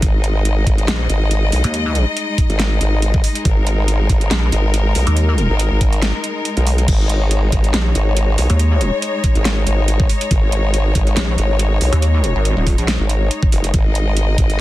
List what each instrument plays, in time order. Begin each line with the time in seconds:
Already playing: string section G#3 D#4
0.02 wobble bass G#1, string section D#5, kick, closed hi-hat
0.24 closed hi-hat
0.45 closed hi-hat
0.67 wobble bass G#1, kick, closed hi-hat
0.78 closed hi-hat
0.88 wobble bass A#1, snare, closed hi-hat
1.09 wobble bass G#1, closed hi-hat
1.31 closed hi-hat
1.52 wobble bass B1, open hi-hat
1.64 wobble bass D#2, closed hi-hat
1.74 closed hi-hat
1.95 closed hi-hat
2.17 closed hi-hat
2.38 kick, closed hi-hat
2.50 wobble bass G#1, closed hi-hat
2.59 snare, closed hi-hat
2.81 wobble bass G#1, closed hi-hat
3.02 closed hi-hat
3.14 kick
3.24 open hi-hat
3.35 closed hi-hat
3.45 wobble bass G#1, string section A#4, kick, closed hi-hat
3.67 closed hi-hat
3.88 closed hi-hat
4.09 wobble bass G#1, kick, closed hi-hat
4.21 closed hi-hat
4.31 wobble bass A#1, snare, closed hi-hat
4.52 wobble bass G#1, closed hi-hat
4.74 closed hi-hat
4.95 wobble bass B1, open hi-hat
5.07 wobble bass D#2, closed hi-hat
5.17 closed hi-hat
5.38 closed hi-hat
5.50 wobble bass G#1
5.59 closed hi-hat
5.71 wobble bass G#1
5.81 kick, closed hi-hat
5.93 closed hi-hat
6.02 snare, closed hi-hat
6.24 closed hi-hat
6.45 closed hi-hat
6.57 wobble bass B1, closed hi-hat
6.67 open hi-hat
6.78 closed hi-hat
6.88 wobble bass G#1, string section C#5, kick, closed hi-hat, crash
7.09 closed hi-hat
7.31 closed hi-hat
7.52 wobble bass G#1, kick, closed hi-hat
7.64 closed hi-hat
7.74 wobble bass A#1, snare, closed hi-hat
7.95 wobble bass G#1, closed hi-hat
8.17 closed hi-hat
8.38 wobble bass B1, open hi-hat
8.50 wobble bass D#2, closed hi-hat
8.59 closed hi-hat
8.81 closed hi-hat
9.02 closed hi-hat
9.24 kick, closed hi-hat
9.35 wobble bass G#1, closed hi-hat
9.45 snare, closed hi-hat
9.67 wobble bass G#1, closed hi-hat
9.88 closed hi-hat
10.00 kick
10.09 open hi-hat
10.21 closed hi-hat
10.31 wobble bass G#1, kick, closed hi-hat
10.52 closed hi-hat
10.74 closed hi-hat
10.95 wobble bass G#1, kick, closed hi-hat
11.07 closed hi-hat
11.17 wobble bass A#1, snare, closed hi-hat
11.38 wobble bass G#1, closed hi-hat
11.59 closed hi-hat
11.81 wobble bass B1, open hi-hat
11.93 wobble bass D#2, closed hi-hat
12.02 closed hi-hat
12.24 closed hi-hat
12.35 wobble bass G#1
12.45 closed hi-hat
12.57 wobble bass D#1
12.67 kick, open hi-hat
12.78 wobble bass A#1, closed hi-hat
12.88 snare, closed hi-hat
13.00 wobble bass G#1
13.09 closed hi-hat
13.31 closed hi-hat
13.43 kick
13.52 wobble bass F#1, open hi-hat
13.64 closed hi-hat
13.74 wobble bass G#1, string section D#5, kick, closed hi-hat
13.95 closed hi-hat
14.17 closed hi-hat
14.38 wobble bass G#1, kick, closed hi-hat
14.50 closed hi-hat